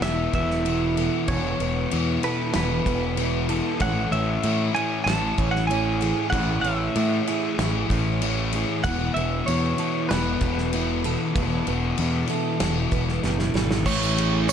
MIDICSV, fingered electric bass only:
0, 0, Header, 1, 2, 480
1, 0, Start_track
1, 0, Key_signature, 3, "major"
1, 0, Tempo, 628931
1, 981, Time_signature, 4, 2, 24, 8
1, 11087, End_track
2, 0, Start_track
2, 0, Title_t, "Fingered electric bass"
2, 0, Program_c, 0, 33
2, 13, Note_on_c, 0, 28, 92
2, 203, Note_off_c, 0, 28, 0
2, 257, Note_on_c, 0, 28, 85
2, 824, Note_off_c, 0, 28, 0
2, 981, Note_on_c, 0, 28, 106
2, 1170, Note_off_c, 0, 28, 0
2, 1222, Note_on_c, 0, 28, 96
2, 1411, Note_off_c, 0, 28, 0
2, 1473, Note_on_c, 0, 40, 88
2, 1658, Note_off_c, 0, 40, 0
2, 1952, Note_on_c, 0, 28, 96
2, 2138, Note_off_c, 0, 28, 0
2, 2186, Note_on_c, 0, 28, 79
2, 2752, Note_off_c, 0, 28, 0
2, 2909, Note_on_c, 0, 33, 105
2, 3098, Note_off_c, 0, 33, 0
2, 3140, Note_on_c, 0, 33, 92
2, 3332, Note_off_c, 0, 33, 0
2, 3387, Note_on_c, 0, 45, 82
2, 3577, Note_off_c, 0, 45, 0
2, 3864, Note_on_c, 0, 33, 95
2, 4055, Note_off_c, 0, 33, 0
2, 4109, Note_on_c, 0, 33, 89
2, 4674, Note_off_c, 0, 33, 0
2, 4832, Note_on_c, 0, 33, 96
2, 5020, Note_off_c, 0, 33, 0
2, 5057, Note_on_c, 0, 33, 96
2, 5251, Note_off_c, 0, 33, 0
2, 5311, Note_on_c, 0, 45, 89
2, 5499, Note_off_c, 0, 45, 0
2, 5791, Note_on_c, 0, 33, 94
2, 5979, Note_off_c, 0, 33, 0
2, 6029, Note_on_c, 0, 33, 81
2, 6594, Note_off_c, 0, 33, 0
2, 6749, Note_on_c, 0, 28, 98
2, 6938, Note_off_c, 0, 28, 0
2, 6995, Note_on_c, 0, 28, 101
2, 7181, Note_off_c, 0, 28, 0
2, 7238, Note_on_c, 0, 40, 86
2, 7423, Note_off_c, 0, 40, 0
2, 7718, Note_on_c, 0, 28, 110
2, 7903, Note_off_c, 0, 28, 0
2, 7948, Note_on_c, 0, 28, 81
2, 8511, Note_off_c, 0, 28, 0
2, 8671, Note_on_c, 0, 28, 100
2, 8857, Note_off_c, 0, 28, 0
2, 8915, Note_on_c, 0, 28, 90
2, 9100, Note_off_c, 0, 28, 0
2, 9149, Note_on_c, 0, 40, 80
2, 9335, Note_off_c, 0, 40, 0
2, 9626, Note_on_c, 0, 28, 96
2, 9813, Note_off_c, 0, 28, 0
2, 9862, Note_on_c, 0, 28, 78
2, 10078, Note_off_c, 0, 28, 0
2, 10102, Note_on_c, 0, 30, 77
2, 10317, Note_off_c, 0, 30, 0
2, 10335, Note_on_c, 0, 32, 82
2, 10553, Note_off_c, 0, 32, 0
2, 10576, Note_on_c, 0, 33, 104
2, 11087, Note_off_c, 0, 33, 0
2, 11087, End_track
0, 0, End_of_file